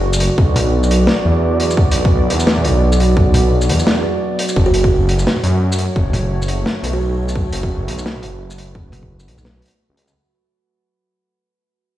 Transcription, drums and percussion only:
0.13 shaker medium
0.20 closed hi-hat medium
0.38 kick loud
0.56 closed hi-hat loud
0.56 mid tom medium
0.83 shaker medium
0.91 closed hi-hat medium
1.07 snare loud
1.60 closed hi-hat medium
1.71 shaker medium
1.77 kick loud
1.91 closed hi-hat medium
2.05 kick loud
2.30 closed hi-hat medium
2.40 shaker soft
2.47 snare loud
2.58 mid tom soft
2.65 closed hi-hat medium
2.92 shaker medium
3.00 closed hi-hat medium
3.17 kick loud
3.34 closed hi-hat medium
3.34 mid tom medium
3.61 shaker medium
3.69 closed hi-hat medium
3.79 shaker medium
3.87 snare loud
4.39 closed hi-hat medium
4.49 shaker medium
4.56 kick loud
4.74 closed hi-hat medium
4.84 kick loud
5.09 closed hi-hat medium
5.19 shaker soft
5.27 snare loud
5.37 mid tom soft
5.44 closed hi-hat medium
5.72 shaker medium
5.78 closed hi-hat medium
5.96 kick loud
6.13 closed hi-hat medium
6.13 mid tom medium
6.42 shaker medium
6.48 closed hi-hat medium
6.66 snare loud
6.84 closed hi-hat medium
7.29 shaker medium
7.36 kick loud
7.53 closed hi-hat medium
7.63 kick loud
7.88 closed hi-hat medium
7.98 shaker medium
8.06 snare loud
8.16 mid tom soft
8.23 closed hi-hat medium
8.50 shaker medium
8.58 closed hi-hat medium
8.75 kick loud
8.92 closed hi-hat medium
8.92 mid tom medium
9.03 kick medium
9.20 shaker medium
9.28 closed hi-hat medium
9.38 mid tom medium
9.38 shaker medium
9.45 snare loud
9.62 closed hi-hat soft
9.65 closed hi-hat medium
9.68 closed hi-hat medium
9.97 closed hi-hat medium
10.08 shaker medium

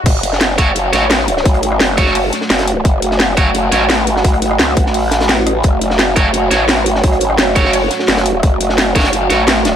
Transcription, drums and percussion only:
0.06 kick loud
0.06 closed hi-hat medium
0.06 crash loud
0.23 closed hi-hat loud
0.23 closed hi-hat medium
0.33 snare medium
0.41 snare loud
0.41 closed hi-hat medium
0.41 closed hi-hat loud
0.58 kick loud
0.58 closed hi-hat loud
0.58 closed hi-hat medium
0.76 closed hi-hat medium
0.93 snare medium
0.93 closed hi-hat loud
0.93 closed hi-hat medium
1.02 cross-stick soft
1.10 snare loud
1.10 closed hi-hat medium
1.19 cross-stick soft
1.19 snare soft
1.28 closed hi-hat loud
1.28 closed hi-hat medium
1.37 snare medium
1.45 kick loud
1.45 closed hi-hat medium
1.54 cross-stick soft
1.54 closed hi-hat soft
1.63 closed hi-hat medium
1.63 closed hi-hat loud
1.72 cross-stick soft
1.80 snare loud
1.80 closed hi-hat medium
1.98 kick loud
1.98 closed hi-hat medium
2.06 snare soft
2.15 closed hi-hat medium
2.15 open hi-hat medium
2.33 snare soft
2.33 closed hi-hat medium
2.41 snare medium
2.50 snare loud
2.50 closed hi-hat medium
2.59 snare loud
2.59 closed hi-hat medium
2.68 closed hi-hat loud
2.68 closed hi-hat medium
2.85 kick loud
2.85 closed hi-hat medium
3.02 closed hi-hat medium
3.02 closed hi-hat loud
3.11 snare medium
3.19 snare loud
3.19 closed hi-hat medium
3.37 kick loud
3.37 closed hi-hat loud
3.37 closed hi-hat medium
3.55 closed hi-hat medium
3.72 snare medium
3.72 closed hi-hat medium
3.81 cross-stick soft
3.90 snare loud
3.90 closed hi-hat medium
3.90 closed hi-hat loud
3.98 cross-stick soft
3.98 snare soft
4.07 closed hi-hat loud
4.07 closed hi-hat medium
4.17 snare medium
4.24 kick loud
4.24 closed hi-hat loud
4.24 closed hi-hat medium
4.33 cross-stick soft
4.33 closed hi-hat soft
4.42 closed hi-hat medium
4.51 cross-stick soft
4.59 snare loud
4.59 closed hi-hat medium
4.77 kick loud
4.77 closed hi-hat medium
4.86 snare medium
4.94 closed hi-hat medium
4.94 open hi-hat medium
5.11 snare loud
5.11 closed hi-hat loud
5.11 closed hi-hat medium
5.20 snare loud
5.20 closed hi-hat medium
5.29 snare loud
5.29 closed hi-hat medium
5.46 cross-stick medium
5.46 closed hi-hat medium
5.63 kick loud
5.63 closed hi-hat loud
5.63 closed hi-hat medium
5.81 closed hi-hat medium
5.90 snare medium
5.99 snare loud
5.99 closed hi-hat medium
6.16 kick loud
6.16 closed hi-hat medium
6.34 closed hi-hat medium
6.51 snare medium
6.51 closed hi-hat medium
6.60 cross-stick soft
6.69 snare loud
6.69 closed hi-hat medium
6.69 closed hi-hat loud
6.77 cross-stick soft
6.77 snare soft
6.86 closed hi-hat medium
6.86 closed hi-hat loud
6.95 snare medium
7.04 kick loud
7.04 closed hi-hat medium
7.12 cross-stick soft
7.12 closed hi-hat soft
7.21 closed hi-hat medium
7.21 closed hi-hat loud
7.30 cross-stick soft
7.38 snare loud
7.38 closed hi-hat loud
7.38 closed hi-hat medium
7.56 kick loud
7.56 closed hi-hat medium
7.64 snare soft
7.73 closed hi-hat medium
7.73 open hi-hat medium
7.91 snare medium
7.91 closed hi-hat medium
7.99 snare medium
8.08 snare loud
8.08 closed hi-hat medium
8.17 snare loud
8.17 closed hi-hat medium
8.26 closed hi-hat loud
8.26 closed hi-hat medium
8.43 kick loud
8.43 closed hi-hat medium
8.61 closed hi-hat medium
8.61 closed hi-hat loud
8.69 snare medium
8.78 snare loud
8.78 closed hi-hat medium
8.78 closed hi-hat loud
8.95 kick loud
8.95 snare medium
8.95 closed hi-hat loud
8.95 closed hi-hat medium
9.00 snare medium
9.00 closed hi-hat medium
9.04 snare loud
9.04 closed hi-hat medium
9.13 closed hi-hat medium
9.30 snare medium
9.30 closed hi-hat medium
9.30 closed hi-hat loud
9.47 snare loud
9.47 closed hi-hat loud
9.47 closed hi-hat medium
9.56 cross-stick soft
9.56 snare soft
9.65 snare loud
9.65 closed hi-hat medium
9.65 closed hi-hat loud

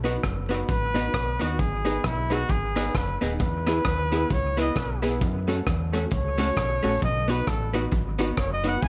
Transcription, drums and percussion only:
0.05 closed hi-hat medium
0.23 kick loud
0.23 cross-stick loud
0.23 closed hi-hat medium
0.51 closed hi-hat medium
0.69 kick loud
0.69 closed hi-hat medium
0.96 closed hi-hat medium
1.14 kick loud
1.14 cross-stick loud
1.14 closed hi-hat medium
1.41 closed hi-hat medium
1.59 kick loud
1.59 closed hi-hat medium
1.86 closed hi-hat medium
2.04 kick loud
2.04 cross-stick loud
2.04 closed hi-hat medium
2.31 closed hi-hat medium
2.49 kick loud
2.49 closed hi-hat medium
2.77 cross-stick medium
2.77 closed hi-hat loud
2.95 kick loud
2.95 cross-stick loud
2.95 closed hi-hat medium
3.21 closed hi-hat medium
3.40 kick loud
3.40 closed hi-hat medium
3.67 cross-stick medium
3.67 closed hi-hat medium
3.85 kick loud
3.85 cross-stick loud
3.85 closed hi-hat medium
4.12 closed hi-hat medium
4.30 kick loud
4.30 closed hi-hat medium
4.58 closed hi-hat loud
4.76 kick loud
4.76 cross-stick loud
4.76 closed hi-hat medium
5.03 closed hi-hat medium
5.21 kick loud
5.21 closed hi-hat medium
5.48 closed hi-hat medium
5.67 kick loud
5.67 cross-stick loud
5.67 closed hi-hat medium
5.94 closed hi-hat medium
6.11 kick loud
6.11 closed hi-hat medium
6.38 closed hi-hat loud
6.57 kick loud
6.57 cross-stick loud
6.57 closed hi-hat medium
6.84 open hi-hat medium
7.02 kick loud
7.02 closed hi-hat medium
7.29 closed hi-hat medium
7.47 kick loud
7.47 cross-stick loud
7.47 closed hi-hat medium
7.74 closed hi-hat medium
7.92 kick loud
7.92 closed hi-hat medium
8.19 closed hi-hat loud
8.37 kick loud
8.37 cross-stick loud
8.37 closed hi-hat medium
8.64 closed hi-hat medium
8.82 kick loud
8.82 closed hi-hat medium

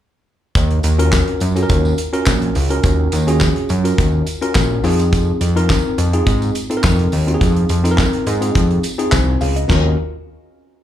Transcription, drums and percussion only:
0.55 kick loud
0.55 closed hi-hat medium
0.55 tambourine medium
0.71 closed hi-hat soft
0.83 closed hi-hat medium
0.83 tambourine medium
0.99 closed hi-hat medium
1.12 kick loud
1.12 snare loud
1.12 clap medium
1.12 tambourine loud
1.27 closed hi-hat soft
1.40 closed hi-hat medium
1.40 tambourine soft
1.56 closed hi-hat medium
1.56 tambourine soft
1.69 kick loud
1.69 closed hi-hat medium
1.69 tambourine soft
1.85 tambourine soft
1.98 closed hi-hat medium
1.98 tambourine medium
2.13 closed hi-hat soft
2.26 kick loud
2.26 snare loud
2.26 clap medium
2.26 tambourine medium
2.42 closed hi-hat soft
2.55 open hi-hat medium
2.55 tambourine soft
2.70 closed hi-hat medium
2.83 kick loud
2.83 closed hi-hat medium
2.83 tambourine soft
3.12 closed hi-hat medium
3.12 tambourine medium
3.28 closed hi-hat medium
3.28 tambourine soft
3.41 kick loud
3.41 snare loud
3.41 clap medium
3.41 tambourine loud
3.56 closed hi-hat soft
3.69 closed hi-hat medium
3.69 tambourine soft
3.85 closed hi-hat medium
3.85 tambourine soft
3.98 kick loud
3.98 closed hi-hat medium
3.98 tambourine soft
4.26 closed hi-hat medium
4.26 tambourine medium
4.42 closed hi-hat medium
4.55 kick loud
4.55 snare loud
4.55 clap medium
4.55 tambourine loud
4.84 open hi-hat medium
4.84 tambourine soft
4.99 closed hi-hat medium
4.99 tambourine soft
5.13 kick loud
5.13 closed hi-hat medium
5.13 tambourine soft
5.41 closed hi-hat medium
5.41 tambourine medium
5.57 closed hi-hat medium
5.70 kick loud
5.70 snare loud
5.70 clap medium
5.70 tambourine medium
5.98 closed hi-hat medium
5.98 tambourine soft
6.13 closed hi-hat soft
6.27 kick loud
6.27 closed hi-hat medium
6.27 tambourine soft
6.42 closed hi-hat soft
6.42 tambourine soft
6.55 closed hi-hat medium
6.55 tambourine medium
6.71 closed hi-hat soft
6.83 kick loud
6.83 snare loud
6.83 clap medium
6.83 tambourine medium
6.99 closed hi-hat soft
7.12 open hi-hat medium
7.12 tambourine soft
7.28 closed hi-hat medium
7.41 kick loud
7.41 closed hi-hat medium
7.41 tambourine soft
7.56 closed hi-hat soft
7.69 closed hi-hat medium
7.69 tambourine soft
7.85 closed hi-hat medium
7.85 tambourine soft
7.98 kick loud
7.98 snare loud
7.98 clap medium
7.98 tambourine medium
8.13 closed hi-hat soft
8.26 closed hi-hat medium
8.26 tambourine soft
8.42 closed hi-hat soft
8.42 tambourine soft
8.55 kick loud
8.55 closed hi-hat medium
8.55 tambourine soft
8.71 closed hi-hat soft
8.83 closed hi-hat medium
8.83 tambourine medium
8.99 closed hi-hat medium
9.12 kick loud
9.12 snare loud
9.12 clap medium
9.12 tambourine medium
9.41 open hi-hat medium
9.41 tambourine soft
9.56 closed hi-hat soft
9.70 kick medium
9.70 snare medium
9.70 tambourine medium
9.70 crash medium

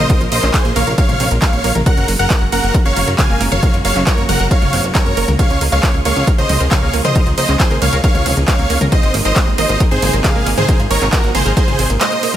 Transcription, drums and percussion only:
0.10 kick loud
0.10 closed hi-hat medium
0.10 ride medium
0.21 closed hi-hat soft
0.32 open hi-hat loud
0.32 ride medium
0.43 clap soft
0.43 closed hi-hat medium
0.54 kick loud
0.54 clap loud
0.54 closed hi-hat medium
0.54 ride medium
0.65 closed hi-hat soft
0.76 open hi-hat loud
0.76 mid tom medium
0.76 ride medium
0.87 closed hi-hat medium
0.98 kick loud
0.98 closed hi-hat medium
0.98 ride medium
1.09 closed hi-hat soft
1.09 mid tom medium
1.20 open hi-hat loud
1.20 ride medium
1.31 closed hi-hat medium
1.42 kick loud
1.42 clap loud
1.42 closed hi-hat medium
1.42 ride medium
1.53 closed hi-hat soft
1.64 open hi-hat loud
1.64 ride medium
1.75 closed hi-hat medium
1.75 mid tom medium
1.86 kick loud
1.86 closed hi-hat medium
1.86 ride medium
1.97 closed hi-hat soft
2.08 open hi-hat loud
2.08 ride medium
2.19 closed hi-hat medium
2.30 kick loud
2.30 clap loud
2.30 closed hi-hat medium
2.30 ride medium
2.52 open hi-hat loud
2.52 ride medium
2.63 closed hi-hat medium
2.74 kick loud
2.74 closed hi-hat medium
2.74 ride medium
2.85 closed hi-hat soft
2.96 open hi-hat loud
2.96 mid tom medium
2.96 ride medium
3.07 closed hi-hat medium
3.19 kick loud
3.19 clap loud
3.19 closed hi-hat medium
3.19 mid tom medium
3.19 ride medium
3.41 open hi-hat loud
3.41 ride medium
3.52 closed hi-hat medium
3.52 mid tom medium
3.63 kick loud
3.63 closed hi-hat medium
3.63 ride medium
3.74 closed hi-hat soft
3.85 open hi-hat loud
3.85 ride medium
3.96 clap soft
3.96 closed hi-hat medium
4.07 kick loud
4.07 clap loud
4.07 closed hi-hat medium
4.07 ride medium
4.18 closed hi-hat soft
4.29 open hi-hat loud
4.29 mid tom medium
4.29 ride medium
4.40 closed hi-hat medium
4.51 kick loud
4.51 closed hi-hat medium
4.51 ride medium
4.62 closed hi-hat soft
4.62 mid tom medium
4.73 open hi-hat loud
4.73 ride medium
4.84 closed hi-hat medium
4.95 kick loud
4.95 clap loud
4.95 closed hi-hat medium
4.95 ride medium
5.06 closed hi-hat soft
5.17 open hi-hat medium
5.17 ride medium
5.28 closed hi-hat medium
5.28 mid tom medium
5.39 kick loud
5.39 closed hi-hat medium
5.39 ride medium
5.50 closed hi-hat soft
5.61 open hi-hat loud
5.61 ride medium
5.72 closed hi-hat medium
5.83 kick loud
5.83 clap loud
5.83 closed hi-hat medium
5.83 ride medium
6.05 open hi-hat medium
6.05 ride medium
6.16 closed hi-hat medium
6.27 kick loud
6.27 closed hi-hat medium
6.27 ride medium
6.38 closed hi-hat soft
6.49 open hi-hat loud
6.49 mid tom medium
6.49 ride medium
6.60 closed hi-hat medium
6.71 kick loud
6.71 clap loud
6.71 closed hi-hat medium
6.71 mid tom medium
6.71 ride medium
6.93 open hi-hat loud
6.93 ride medium
7.05 closed hi-hat medium
7.05 mid tom medium
7.16 kick loud
7.16 closed hi-hat medium
7.16 ride medium
7.27 closed hi-hat soft
7.38 open hi-hat loud
7.38 ride medium
7.49 clap soft
7.49 closed hi-hat medium
7.60 kick loud
7.60 clap loud
7.60 closed hi-hat medium
7.60 ride medium
7.71 closed hi-hat soft
7.82 open hi-hat medium
7.82 mid tom medium
7.82 ride medium
7.93 closed hi-hat medium
8.04 kick loud
8.04 closed hi-hat medium
8.04 ride medium
8.15 closed hi-hat soft
8.15 mid tom medium
8.26 open hi-hat loud
8.26 ride medium
8.37 closed hi-hat medium
8.48 kick loud
8.48 clap loud
8.48 closed hi-hat medium
8.48 ride medium
8.59 closed hi-hat soft
8.70 open hi-hat medium
8.70 ride medium
8.81 closed hi-hat medium
8.81 mid tom medium
8.92 kick loud
8.92 closed hi-hat medium
8.92 ride medium
9.03 closed hi-hat soft
9.14 open hi-hat loud
9.14 ride medium
9.25 closed hi-hat medium
9.36 kick loud
9.36 clap loud
9.36 closed hi-hat medium
9.36 ride medium
9.58 open hi-hat medium
9.58 ride medium
9.69 closed hi-hat medium
9.80 kick loud
9.80 closed hi-hat medium
9.80 ride medium
9.91 closed hi-hat soft
10.02 open hi-hat loud
10.02 mid tom medium
10.02 ride medium
10.13 closed hi-hat medium
10.24 kick loud
10.24 clap loud
10.24 closed hi-hat medium
10.24 mid tom medium
10.24 ride medium
10.46 open hi-hat medium
10.46 ride medium
10.57 closed hi-hat medium
10.57 mid tom medium
10.69 kick loud
10.69 closed hi-hat medium
10.69 ride medium
10.80 closed hi-hat soft
10.91 open hi-hat loud
10.91 ride medium
11.02 clap soft
11.02 closed hi-hat medium
11.13 kick loud
11.13 clap loud
11.13 closed hi-hat medium
11.13 ride medium
11.24 closed hi-hat soft
11.35 open hi-hat medium
11.35 mid tom medium
11.35 ride medium
11.46 closed hi-hat medium
11.57 kick loud
11.57 closed hi-hat medium
11.57 ride medium
11.68 closed hi-hat soft
11.68 mid tom medium
11.79 open hi-hat loud
11.79 ride medium
11.90 closed hi-hat medium
12.01 clap loud
12.01 closed hi-hat medium
12.01 ride medium
12.12 closed hi-hat soft
12.23 open hi-hat medium
12.23 ride medium

